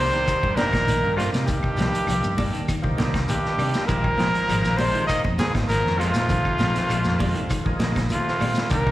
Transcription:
Already playing: C3 D#3 G3 A#3 D4 C5
0.00 G4
0.12 D#3 A#3 D4 G4, closed hi-hat
0.26 D#3 F3 A#3 D#4 G4, kick, closed hi-hat, claves, shekere
0.43 G2, kick, low conga
0.55 A#2 D#3 F3 A#3 D4 D#4 G4 A#4, snare, closed hi-hat, high conga, shekere
0.73 A#1, kick, snare, closed hi-hat, high conga, claves, shekere
0.87 D#3, closed hi-hat, high conga, shekere
1.02 G2 F3 A#3 D#4 G4
1.15 F2 C3 D#3 G3 A#3 D4 F4 G4, claves, shekere
1.19 snare, closed hi-hat
1.33 C3, snare, closed hi-hat, shekere
1.46 C2 G2 D#3 G4, kick, closed hi-hat, low conga, shekere
1.63 kick, claves
1.77 C2 D#3 F3 A#3 D4 G4, snare, closed hi-hat, high conga, shekere
1.93 muted fingered electric bass stroke, closed hi-hat, shekere
2.07 C2 D#3 F3 A#3 D4 G4, closed hi-hat, claves, shekere
2.23 G2, high conga, shekere
2.37 D#3 G3 A#3 D4 G4, kick, open hi-hat, high conga, shekere
2.52 D#3 A#3 D4 G4, closed hi-hat
2.68 D#3, kick, closed hi-hat, claves, shekere
2.82 C2 F3 A#3 D#4 G4, kick, low conga
2.97 C2 D3 D#3 A#3 D4 G4, snare, closed hi-hat, high conga, shekere
3.14 kick, snare, closed hi-hat, claves, shekere
3.28 G2 D#3 G4, closed hi-hat, high conga, shekere
3.45 snare
3.57 C3 G3 D4 G4, muted clean electric guitar stroke, open hi-hat, claves, shekere
3.74 snare, closed hi-hat, shekere
3.87 A#1 A#2 D#3 F3 G#3 C4 D#4 F4 G#4 A#4, kick, closed hi-hat, low conga, shekere
4.02 D#4 G#4, kick, claves
4.17 A#1 D#3 F3 G#3 A#3 C4 D#4 F4 G#4, snare, closed hi-hat, high conga, shekere
4.34 closed hi-hat, shekere
4.47 G#1 D#3 F3 G#3 A#3 C4 D#4 F4 G#4, closed hi-hat, claves, shekere
4.64 A#1, snare, shekere
4.77 C3 D#3 G3 G#3 C4 F4 C5, open hi-hat, high conga, shekere
4.93 D#3 G#3 C4 F4, closed hi-hat, low conga
5.07 D#3 F3 A#3 D#4 G#4 D#5, kick, closed hi-hat, claves, shekere
5.24 F2, kick, high conga, low conga
5.38 G#2 D3 D#3 F3 G#3 A#3 C4 D#4 F4 G#4, snare, closed hi-hat, high conga, shekere
5.54 G#1, kick, snare, closed hi-hat, high conga, claves, shekere
5.68 A#2 D#3 F3 A#4, snare, closed hi-hat, high conga, shekere
5.84 F2 F3 A#3 D#4 G#4, snare
5.98 F2 C3 D#3 G#3 C4 F4, muted clean electric guitar stroke, snare, closed hi-hat, claves, shekere
6.14 A#2, snare, closed hi-hat, shekere
6.29 A#1 D#3, kick, closed hi-hat, low conga, shekere
6.45 kick, claves
6.58 A#1 D#3 F3 G#3 C4 F4, snare, closed hi-hat, high conga, shekere
6.75 muted fingered electric bass stroke, snare, closed hi-hat, shekere
6.89 A#1 D#3 F3 G#3 C4 F4, closed hi-hat, claves, shekere
7.04 F2, snare, high conga, shekere
7.19 D#3 G3 G#3 C4 F4, kick, open hi-hat, high conga, shekere
7.34 D#3 C4, muted clean electric guitar stroke, closed hi-hat, low conga
7.50 D#3, kick, closed hi-hat, claves, shekere
7.64 A#1 F3 A#3 D#4 G#4, kick, low conga
7.79 A#1 D3 D#3 G#3 C4, muted clean electric guitar stroke, snare, closed hi-hat, high conga, shekere
7.95 kick, snare, closed hi-hat, high conga, claves, shekere
8.10 F2 C3 D#3 F4, closed hi-hat, high conga, shekere
8.28 snare
8.39 A#2 D#3 G3 G#3 C4 F4, open hi-hat, high conga, claves, shekere
8.55 snare, closed hi-hat, shekere
8.69 C2 A#2 D#3 A#3 D4 D#4 G4 A#4, kick, closed hi-hat, low conga, shekere
8.83 D#4 G4, kick, claves

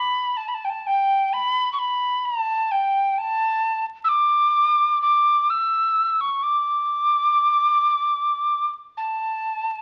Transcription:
Already playing: B5
0.37 A5
0.48 B5
0.54 A5
0.65 G5
0.69 A5
0.86 G5
1.33 B5
1.73 C#6
1.79 B5
2.25 A5
2.71 G5
3.18 A5
4.04 E6
4.08 D6
5.02 D6
5.50 E6
6.21 C#6
6.43 D6
8.97 A5

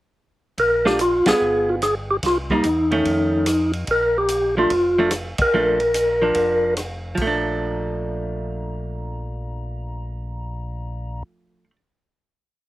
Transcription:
0.58 A#1 A#4, kick, ride
0.85 A3 D4 F4 G4, snare
0.99 F4, hi-hat pedal, ride
1.26 A#1 B3 F4 G#4, snare, ride
1.40 G1
1.69 F4
1.82 G#4, cross-stick, hi-hat pedal, ride
2.11 G4
2.23 C2 F4, kick, snare, ride
2.50 G3 A#3 D#4, kick
2.64 E2, hi-hat pedal, ride
2.91 D#3 A3 C#4, ride
3.05 F2, kick, ride
3.46 cross-stick, hi-hat pedal, ride
3.73 ride
3.87 A#1 A#4, kick, ride
4.18 G4
4.28 hi-hat pedal, ride
4.57 F3 A3 D4 F4
4.70 F1, kick, ride
4.99 F3 A3 D4
5.11 cross-stick, hi-hat pedal, ride
5.38 F1 A#4, kick, ride
5.54 A#1 F3 A3 D4
5.80 ride
5.94 hi-hat pedal, ride
6.22 F3 D4
6.35 F1, kick, ride
6.77 cross-stick, hi-hat pedal, ride
7.15 A#1 F3, kick, crash
7.22 A3
7.27 D4

